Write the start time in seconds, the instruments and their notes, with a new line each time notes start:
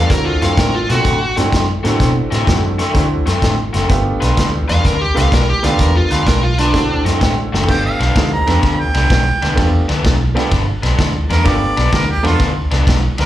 Already playing: overdriven electric guitar G2 F3 B3
0.10 fingered electric bass D2, grand piano A3 C4 D4 E4 F#4, lead electric guitar A#4, kick, snare, closed hi-hat
0.26 lead electric guitar F4
0.42 fingered electric bass F#2, overdriven electric guitar D3 A3 C4 F#4, lead electric guitar F5, snare, closed hi-hat
0.57 fingered electric bass A2, lead electric guitar A#4, kick, snare, closed hi-hat
0.75 lead electric guitar F4
0.89 fingered electric bass B2, overdriven electric guitar D3 A3 C4 F#4, lead electric guitar F#4, snare, closed hi-hat
1.04 fingered electric bass A2, kick, snare, closed hi-hat
1.36 fingered electric bass G2, overdriven electric guitar D3 A3 C4 F#4, grand piano A3 C4 D4 E4 F#4, snare, closed hi-hat
1.52 fingered electric bass F#2, kick, snare, closed hi-hat
1.83 fingered electric bass A2, overdriven electric guitar D3 A3 C4 F#4, grand piano A3 C4 D4 E4 F#4, snare, closed hi-hat
2.00 fingered electric bass B2, kick, snare, closed hi-hat
2.31 fingered electric bass A2, overdriven electric guitar D3 A3 C4 F#4, snare, closed hi-hat
2.47 fingered electric bass F#2, grand piano A3 C4 D4 E4 F#4, kick, snare, closed hi-hat
2.79 overdriven electric guitar D3 A3 C4 F#4, snare, closed hi-hat
2.94 fingered electric bass D2, grand piano A3 C4 D4 E4 F#4, kick, snare, closed hi-hat
3.26 fingered electric bass F#2, overdriven electric guitar D3 A3 C4 F#4, snare, closed hi-hat
3.42 fingered electric bass A2, kick, snare, closed hi-hat
3.73 fingered electric bass F#1, overdriven electric guitar D3 A3 C4 F#4, snare, closed hi-hat
3.89 fingered electric bass G1, grand piano A3 B3 D4 F4 G4, kick, snare, closed hi-hat
4.21 fingered electric bass B1, overdriven electric guitar G3 D4 F4 B4, snare, closed hi-hat
4.37 fingered electric bass D2, kick, snare, closed hi-hat
4.68 fingered electric bass E2, overdriven electric guitar G3 D4 F4 B4, lead electric guitar F5, snare, closed hi-hat
4.85 fingered electric bass D2, lead electric guitar A#4, kick, snare, closed hi-hat
5.01 lead electric guitar G4
5.14 fingered electric bass C2, overdriven electric guitar G3 D4 F4 B4, grand piano A3 B3 D4 F4 G4, lead electric guitar F5, snare, closed hi-hat
5.32 fingered electric bass B1, lead electric guitar A#4, kick, snare, closed hi-hat
5.50 lead electric guitar G4
5.63 fingered electric bass D2, overdriven electric guitar G3 D4 F4 B4, grand piano A3 B3 D4 F4 G4, lead electric guitar F5, snare, closed hi-hat
5.79 fingered electric bass E2, lead electric guitar A#4, kick, snare, closed hi-hat
5.96 lead electric guitar F4
6.11 fingered electric bass D2, overdriven electric guitar G3 D4 F4 B4, lead electric guitar F5, snare, closed hi-hat
6.27 fingered electric bass B1, lead electric guitar A#4, kick, snare, closed hi-hat
6.43 lead electric guitar F4
6.58 overdriven electric guitar G3 D4 F4 B4, lead electric guitar D4, snare, closed hi-hat
6.73 fingered electric bass D2, grand piano A3 C4 D4 E4 F#4, kick, snare, closed hi-hat
7.05 fingered electric bass F#2, overdriven electric guitar D3 A3 C4 F#4, snare, closed hi-hat
7.21 fingered electric bass A2, kick, snare, closed hi-hat
7.53 fingered electric bass F#1, overdriven electric guitar D3 A3 C4 F#4, snare
7.63 floor tom
7.67 fingered electric bass G1, grand piano A3 B3 D4 F4 G4, harmonica G5, kick, snare, crash
7.86 harmonica F5
8.00 fingered electric bass B1, overdriven electric guitar G2 F3 B3 D4, snare, ride
8.15 fingered electric bass D2, grand piano A#3 C4 D#4 F#4 G#4, kick, snare, ride
8.34 harmonica A#5
8.47 fingered electric bass E2, overdriven electric guitar G2 F3 B3 D4, grand piano A3 B3 D4 F4 G4, snare, ride
8.63 fingered electric bass D2, kick, snare, ride
8.80 harmonica G5
8.94 fingered electric bass C2, overdriven electric guitar G2 F3 B3 D4, snare, ride
9.10 fingered electric bass B1, kick, snare, ride
9.42 fingered electric bass D2, overdriven electric guitar G2 F3 B3 D4, snare, ride
9.56 fingered electric bass E2, grand piano A3 B3 D4 F4 G4, kick, snare, ride
9.89 fingered electric bass D2, overdriven electric guitar G2 F3 B3 D4, snare, ride
10.04 fingered electric bass B1, kick, snare, ride
10.35 overdriven electric guitar G2 F3 B3 D4, grand piano A3 B3 D4 F4 G4, snare, ride
10.52 fingered electric bass G1, kick, snare, ride
10.83 fingered electric bass B1, overdriven electric guitar G2 F3 B3 D4, snare, ride
10.99 fingered electric bass D2, kick, snare, ride
11.30 fingered electric bass E2, overdriven electric guitar G2 F3 B3 D4, harmonica A#4, snare, ride
11.44 fingered electric bass G1, grand piano A3 B3 D4 F4 G4, harmonica D5, kick, snare, ride
11.77 fingered electric bass B1, overdriven electric guitar G2 F3 B3 D4, snare, ride
11.92 fingered electric bass D2, harmonica A#4, kick, snare, ride
12.11 harmonica G4
12.23 fingered electric bass E2, overdriven electric guitar G2 F3 B3 D4, grand piano A3 B3 D4 F4 A4, harmonica F4, snare, ride
12.40 fingered electric bass D2, kick, snare, ride
12.71 fingered electric bass C2, overdriven electric guitar G2 F3 B3 D4, snare, ride
12.87 fingered electric bass B1, kick, snare, ride
13.18 fingered electric bass D2, overdriven electric guitar G2 F3 B3 D4, harmonica A#4, snare, ride